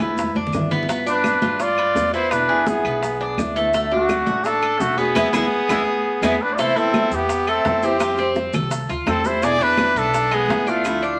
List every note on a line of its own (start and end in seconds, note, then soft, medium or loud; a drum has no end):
0.00 0.33 E2 medium
0.00 0.16 D3 medium
0.00 0.17 G#3 medium
0.00 0.16 B3 medium
0.00 0.34 B3 medium
0.00 0.17 E4 medium
0.00 0.36 E4 medium
0.00 high bongo soft
0.00 claves medium
0.00 maracas soft
0.17 muted nylon-string guitar stroke medium
0.17 high bongo medium
0.17 maracas medium
0.24 high conga medium
0.35 0.52 F2 medium
0.35 0.70 D4 medium
0.35 high conga medium
0.47 low conga medium
0.53 1.37 G2 medium
0.53 0.70 D3 soft
0.53 0.71 G#3 soft
0.53 0.70 B3 soft
0.53 0.69 E4 soft
0.53 high bongo soft
0.53 low bongo medium
0.53 claves medium
0.53 maracas medium
0.59 low conga medium
0.71 0.89 D3 medium
0.71 0.88 G#3 medium
0.71 0.88 B3 medium
0.71 0.88 E4 medium
0.71 high bongo soft
0.71 low conga medium
0.71 maracas soft
0.83 low conga medium
0.88 1.06 G3 medium
0.88 1.06 B3 medium
0.88 1.05 F4 medium
0.88 high bongo medium
0.88 high conga soft
0.88 maracas medium
1.06 1.24 B3 medium
1.06 1.41 D4 medium
1.06 1.62 D4 medium
1.06 1.24 F4 medium
1.06 1.63 B4 medium
1.06 high bongo soft
1.06 high conga soft
1.06 maracas medium
1.24 1.58 G3 soft
1.24 1.59 B3 medium
1.24 1.59 F4 medium
1.24 high bongo medium
1.24 high conga medium
1.24 claves medium
1.24 maracas medium
1.42 1.92 G2 medium
1.42 1.77 F4 medium
1.42 high bongo soft
1.42 high conga medium
1.42 maracas soft
1.59 2.12 F4 medium
1.59 2.14 D5 medium
1.59 muted nylon-string guitar stroke medium
1.59 high bongo medium
1.59 high conga soft
1.59 maracas medium
1.77 2.13 B4 medium
1.77 high conga soft
1.77 claves medium
1.95 2.79 E2 medium
1.95 2.13 G3 soft
1.95 2.14 B3 medium
1.95 2.12 F4 medium
1.95 high bongo soft
1.95 low bongo medium
1.95 high conga medium
1.95 maracas medium
2.13 2.48 B3 medium
2.13 2.31 B3 medium
2.13 2.32 E4 medium
2.13 2.30 F4 medium
2.13 2.34 C5 medium
2.13 high bongo soft
2.13 maracas soft
2.30 2.48 B2 medium
2.30 2.49 D3 medium
2.30 2.49 G#3 medium
2.30 2.49 B3 medium
2.30 2.69 D4 medium
2.30 2.48 E4 medium
2.30 2.68 B4 medium
2.30 high bongo medium
2.30 high conga soft
2.30 claves medium
2.30 maracas medium
2.49 2.66 D3 medium
2.49 2.67 G#3 medium
2.49 2.67 B3 medium
2.49 2.66 E4 medium
2.49 2.84 G#4 medium
2.49 high bongo soft
2.49 high conga soft
2.66 3.02 D3 soft
2.66 3.02 G#3 medium
2.66 3.39 B3 medium
2.66 3.03 B3 medium
2.66 3.02 E4 medium
2.66 3.38 G#4 medium
2.66 high bongo medium
2.66 high conga medium
2.66 maracas medium
2.84 3.34 B1 medium
2.84 3.19 B3 medium
2.84 high bongo soft
2.84 high conga soft
2.84 claves medium
2.84 maracas soft
3.02 muted nylon-string guitar stroke medium
3.02 high bongo medium
3.02 high conga soft
3.02 maracas medium
3.20 3.55 D4 medium
3.20 high conga soft
3.37 4.21 D2 medium
3.37 3.55 D3 soft
3.37 3.55 G#3 soft
3.37 3.55 B3 soft
3.37 3.55 E4 medium
3.37 high bongo soft
3.37 low bongo medium
3.37 high conga medium
3.37 claves medium
3.37 maracas medium
3.56 3.72 D3 medium
3.56 3.74 G#3 medium
3.56 3.73 A3 medium
3.56 3.73 B3 medium
3.56 3.73 E4 medium
3.56 high bongo soft
3.56 maracas soft
3.73 3.91 D3 medium
3.73 3.91 A3 medium
3.73 3.92 D4 medium
3.73 3.91 F#4 medium
3.73 high bongo medium
3.73 high conga soft
3.73 maracas medium
3.91 4.45 A3 medium
3.91 4.09 A3 medium
3.91 4.26 D4 medium
3.91 4.09 D4 medium
3.91 4.47 F#4 loud
3.91 4.09 F#4 medium
3.91 high bongo soft
3.91 high conga soft
4.09 4.44 D3 soft
4.09 4.44 A3 medium
4.09 high bongo medium
4.09 high conga medium
4.09 claves medium
4.09 maracas medium
4.26 4.77 A1 medium
4.26 4.61 F#4 medium
4.26 high bongo soft
4.26 high conga medium
4.26 maracas soft
4.43 4.80 D4 medium
4.43 4.83 A4 loud
4.43 muted nylon-string guitar stroke medium
4.43 high bongo medium
4.43 high conga soft
4.43 maracas medium
4.62 4.97 A4 medium
4.62 high conga soft
4.62 claves medium
4.79 5.13 E1 medium
4.79 4.97 D3 medium
4.79 4.99 A3 medium
4.79 4.98 A3 soft
4.79 4.97 D4 medium
4.79 5.00 F#4 loud
4.79 4.96 F#4 soft
4.79 high bongo soft
4.79 low bongo medium
4.79 high conga medium
4.79 maracas medium
4.97 5.14 A3 medium
4.97 6.22 B3 medium
4.97 5.14 B3 medium
4.97 5.15 D4 medium
4.97 5.15 F#4 medium
4.97 6.23 G#4 loud
4.97 high bongo soft
4.97 maracas soft
5.14 5.29 E2 medium
5.14 5.27 E3 medium
5.14 5.27 G#3 medium
5.14 5.27 B3 loud
5.14 5.27 B3 medium
5.14 5.27 E4 loud
5.14 low bongo loud
5.14 high conga medium
5.14 claves medium
5.14 maracas medium
5.33 5.46 E2 medium
5.33 5.45 E3 loud
5.33 5.45 G#3 medium
5.33 5.45 B3 loud
5.33 5.45 B3 medium
5.33 5.45 E4 loud
5.33 low bongo medium
5.33 high conga loud
5.33 claves medium
5.33 maracas loud
5.68 5.82 E2 medium
5.68 5.80 E3 loud
5.68 5.80 G#3 medium
5.68 5.81 G#3 medium
5.68 5.80 B3 loud
5.68 5.81 B3 medium
5.68 5.81 E4 medium
5.68 low bongo loud
5.68 high conga medium
5.68 claves medium
5.68 maracas medium
6.22 6.35 E2 medium
6.22 6.34 E3 medium
6.22 6.34 G#3 medium
6.22 6.34 B3 medium
6.22 6.34 B3 loud
6.22 6.44 B3 medium
6.22 6.34 E4 medium
6.22 6.43 G#4 medium
6.22 low bongo loud
6.22 high conga medium
6.22 claves medium
6.22 maracas medium
6.42 6.57 D4 medium
6.42 6.55 B4 loud
6.53 6.63 F4 medium
6.53 6.61 D5 medium
6.58 6.75 C3 medium
6.58 6.76 E3 medium
6.58 6.76 A3 medium
6.58 6.75 B3 medium
6.58 6.75 E4 medium
6.58 6.80 E4 medium
6.58 6.78 C5 loud
6.58 high bongo medium
6.58 high conga soft
6.58 maracas medium
6.76 6.93 E3 medium
6.76 6.93 A3 medium
6.76 6.93 B3 medium
6.76 7.17 C4 medium
6.76 6.93 E4 medium
6.76 7.11 E4 medium
6.76 7.15 A4 loud
6.76 high conga soft
6.76 maracas soft
6.94 7.29 E3 soft
6.94 7.29 A3 medium
6.94 7.29 B3 medium
6.94 7.30 E4 medium
6.94 high bongo medium
6.94 high conga medium
6.94 claves medium
6.94 maracas soft
7.11 7.61 E2 medium
7.11 7.50 G4 medium
7.11 high conga soft
7.11 maracas medium
7.15 7.51 B3 medium
7.29 muted nylon-string guitar stroke medium
7.29 high bongo medium
7.29 high conga soft
7.29 maracas medium
7.47 7.82 A3 medium
7.47 7.85 C4 medium
7.47 7.86 A4 loud
7.47 high conga soft
7.47 claves medium
7.47 maracas soft
7.64 8.48 F2 medium
7.64 7.82 E3 soft
7.64 7.82 A3 soft
7.64 7.81 B3 soft
7.64 7.81 E4 medium
7.64 high bongo medium
7.64 low bongo medium
7.64 high conga medium
7.64 maracas soft
7.82 7.98 E3 medium
7.82 7.99 A3 medium
7.82 8.00 B3 medium
7.82 8.00 C4 medium
7.82 8.37 C4 medium
7.82 8.00 E4 medium
7.82 8.37 G4 medium
7.82 maracas medium
7.98 8.16 F3 medium
7.98 8.17 G3 medium
7.98 8.17 C4 medium
7.98 8.18 F4 medium
7.98 8.16 G4 medium
7.98 high bongo medium
7.98 high conga soft
7.98 claves medium
7.98 maracas medium
8.17 8.35 G3 medium
8.17 8.35 C4 medium
8.17 8.53 C4 medium
8.17 8.35 G4 medium
8.17 high bongo soft
8.17 high conga soft
8.17 maracas soft
8.35 8.69 F3 medium
8.35 8.70 G3 medium
8.35 8.70 C4 medium
8.35 8.71 G4 medium
8.35 high bongo medium
8.35 high conga soft
8.35 maracas soft
8.53 8.87 C2 medium
8.53 8.88 A4 medium
8.53 high bongo soft
8.53 high conga medium
8.53 low conga medium
8.53 claves medium
8.53 maracas medium
8.71 muted nylon-string guitar stroke medium
8.71 high bongo medium
8.71 high conga soft
8.71 maracas loud
8.89 9.06 D2 medium
8.89 9.07 F4 medium
8.89 high bongo soft
8.89 high conga soft
8.89 maracas soft
9.06 9.90 E2 medium
9.06 9.24 F3 soft
9.06 9.24 G3 soft
9.06 9.28 C4 medium
9.06 9.25 C4 soft
9.06 9.23 G4 medium
9.06 9.41 A4 medium
9.06 9.28 A4 loud
9.06 high bongo medium
9.06 low bongo medium
9.06 high conga medium
9.06 claves medium
9.06 maracas soft
9.24 9.42 G3 medium
9.24 9.42 C4 medium
9.24 9.45 E4 medium
9.24 9.42 G4 medium
9.24 9.45 C5 loud
9.24 high conga medium
9.24 maracas medium
9.42 9.59 B2 medium
9.42 9.59 D3 medium
9.42 9.60 G#3 medium
9.42 9.59 B3 medium
9.42 9.58 E4 medium
9.42 9.61 G#4 medium
9.42 9.64 D5 loud
9.42 high bongo medium
9.42 high conga soft
9.42 maracas medium
9.59 9.76 D3 medium
9.59 9.77 G#3 medium
9.59 9.77 B3 medium
9.59 9.96 D4 medium
9.59 9.95 D4 medium
9.59 9.77 E4 medium
9.59 10.00 B4 loud
9.59 high conga soft
9.59 maracas soft
9.77 10.11 D3 medium
9.77 10.12 G#3 medium
9.77 10.12 B3 medium
9.77 10.12 E4 medium
9.77 high bongo medium
9.77 high conga medium
9.77 claves medium
9.77 maracas soft
9.95 10.45 B1 loud
9.95 10.30 B3 medium
9.95 10.34 D4 medium
9.95 10.36 A4 loud
9.95 high conga soft
9.95 maracas medium
10.12 muted nylon-string guitar stroke medium
10.12 high bongo medium
10.12 high conga soft
10.12 maracas loud
10.31 10.66 G#3 medium
10.31 10.70 B3 medium
10.31 10.70 G#4 loud
10.31 high conga soft
10.31 claves medium
10.31 maracas soft
10.48 11.20 D2 medium
10.48 10.66 D3 medium
10.48 10.66 G#3 soft
10.48 10.67 B3 medium
10.48 10.65 E4 medium
10.48 high bongo medium
10.48 low bongo medium
10.48 high conga medium
10.48 maracas soft
10.67 10.83 D3 medium
10.67 10.84 G#3 medium
10.67 11.20 A3 medium
10.67 10.84 B3 medium
10.67 10.84 D4 medium
10.67 10.84 E4 medium
10.67 11.20 F4 medium
10.67 maracas medium
10.85 11.02 D3 medium
10.85 11.02 F3 medium
10.85 11.02 A3 medium
10.85 11.02 D4 medium
10.85 11.02 E4 medium
10.85 high bongo medium
10.85 high conga soft
10.85 claves medium
10.85 maracas medium
11.02 11.19 F3 medium
11.02 11.19 A3 medium
11.02 11.20 D4 medium
11.02 11.20 E4 medium
11.02 high conga soft
11.02 maracas soft